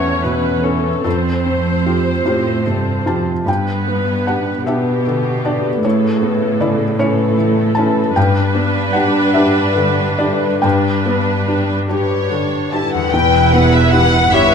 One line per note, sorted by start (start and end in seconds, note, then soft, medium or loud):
0.00 1.01 E2 soft
0.00 1.08 E2 soft
0.00 0.69 A3 soft
0.00 1.07 A3 soft
0.00 1.08 B3 soft
0.00 0.64 C#4 soft
0.00 1.01 C#4 soft
0.00 2.64 A4 soft
0.00 0.64 B4 soft
0.00 0.23 C#5 soft
0.00 0.62 C#5 soft
0.00 1.02 E5 medium
0.00 1.07 F#5 medium
0.00 1.08 G5 medium
0.24 0.89 B2 soft
0.24 0.64 B4 soft
0.24 1.08 B4 soft
0.63 1.01 C#4 soft
0.63 1.05 A4 soft
0.63 1.01 B4 soft
0.63 1.08 C#5 soft
1.04 3.50 F2 soft
1.04 3.43 F2 soft
1.04 2.16 F2 soft
1.04 3.23 C4 soft
1.04 2.22 A4 soft
1.04 3.27 C5 soft
1.45 3.50 A3 soft
1.45 2.10 C4 soft
1.86 2.22 F4 soft
1.86 4.25 G4 soft
1.86 2.23 G4 soft
2.26 2.63 A2 soft
2.26 2.62 F4 soft
2.26 2.63 G4 soft
2.26 3.05 C5 soft
2.26 3.03 C5 soft
2.66 3.07 G2 soft
2.66 3.32 C3 soft
2.66 3.50 A4 soft
3.06 3.48 F2 soft
3.06 3.43 F4 soft
3.06 3.43 G4 soft
3.06 3.50 C5 soft
3.06 3.45 A5 soft
3.46 5.80 G2 soft
3.46 5.87 G2 soft
3.46 4.63 G2 soft
3.46 4.62 B3 soft
3.46 4.62 B4 soft
3.46 4.24 G5 soft
3.87 6.21 B3 soft
3.87 4.51 B3 soft
4.26 4.63 D4 soft
4.26 5.04 G4 soft
4.26 4.63 G4 soft
4.26 4.64 F#5 medium
4.66 5.85 B2 soft
4.66 5.82 B3 soft
4.66 5.03 D4 soft
4.66 5.84 G4 soft
4.66 5.03 G4 soft
4.66 5.43 B4 soft
4.66 5.41 E5 soft
5.05 5.69 D3 soft
5.05 5.87 G4 soft
5.44 5.80 D4 soft
5.44 5.81 G4 soft
5.44 6.97 B4 soft
5.44 5.82 D5 medium
5.84 8.12 A2 soft
5.84 8.19 A2 soft
5.84 8.12 A2 soft
5.84 7.00 C#3 soft
5.84 6.98 A4 soft
5.84 6.57 C#5 medium
6.22 10.12 B3 soft
6.22 6.84 B3 soft
6.60 6.95 C#3 soft
6.60 7.37 E4 soft
6.60 6.95 E4 soft
6.60 6.97 D5 medium
6.99 8.17 A3 soft
6.99 7.34 C#4 soft
6.99 7.34 E4 soft
6.99 8.14 A4 soft
6.99 7.76 B4 soft
6.99 7.73 C#5 medium
7.38 8.00 E3 soft
7.38 8.19 E4 soft
7.75 8.13 C#4 soft
7.75 8.13 E4 soft
7.75 9.32 B4 soft
7.75 8.12 A5 medium
8.16 10.62 G2 soft
8.16 12.89 G2 soft
8.16 10.60 G2 soft
8.16 10.60 D4 medium
8.16 10.60 B4 medium
8.16 8.90 G5 medium
8.54 9.18 B3 soft
8.54 11.05 D4 soft
8.93 9.31 D4 soft
8.93 11.47 G4 soft
8.93 9.31 G4 soft
8.93 9.31 F#5 medium
9.33 9.73 D4 soft
9.33 9.73 G4 soft
9.33 10.19 B4 soft
9.33 10.16 E5 medium
9.76 10.46 D3 soft
10.19 10.59 D4 soft
10.19 10.60 G4 soft
10.19 11.88 B4 soft
10.19 10.60 D5 medium
10.62 13.09 G2 soft
10.62 13.16 G2 soft
10.62 11.79 D4 soft
10.62 11.79 B4 soft
10.62 11.84 G5 medium
11.06 11.73 B3 soft
11.06 13.16 D4 soft
11.48 11.85 D4 soft
11.48 13.02 G4 soft
11.48 11.85 G4 soft
11.89 12.27 D4 soft
11.89 12.27 G4 soft
11.89 12.29 G4 soft
11.89 12.71 B4 soft
11.89 12.69 C#5 medium
12.31 12.97 D3 soft
12.31 12.73 D4 soft
12.72 13.10 D4 soft
12.72 13.13 E4 soft
12.72 13.10 G4 soft
12.72 13.07 B4 soft
12.72 12.93 A5 medium
12.93 14.54 E2 soft
12.93 13.13 F#5 medium
12.99 14.54 E4 soft
13.04 14.54 G4 soft
13.08 14.54 B4 soft
13.08 13.52 G5 medium
13.13 14.28 E1 medium
13.13 14.28 E2 soft
13.13 14.54 E2 soft
13.13 14.28 E4 soft
13.13 14.29 B4 soft
13.53 14.17 B3 soft
13.53 13.73 F#5 medium
13.74 13.93 E5 medium
13.91 14.28 E4 soft
13.91 14.28 G4 soft
13.91 14.31 F#5 medium
14.31 14.54 G1 medium
14.31 14.54 G2 medium
14.31 14.54 B3 medium
14.31 14.54 E4 soft
14.31 14.54 G4 soft
14.31 14.54 B4 medium
14.31 14.54 C#5 medium
14.31 14.52 E5 medium